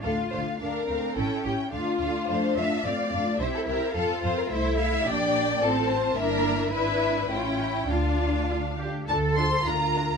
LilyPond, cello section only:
\new Staff \with { instrumentName = "Cello section" } { \time 2/4 \key d \minor \tempo 4 = 107 f'4 d'8 c'8 | cis'4 d'8 d'8~ | d'4 c'8 d'8 | e'4 f'4 |
e'4 d'4 | c'4 d'4 | e'4 cis'4 | f'4 f'8 g'8 |
a'4 f'4 | }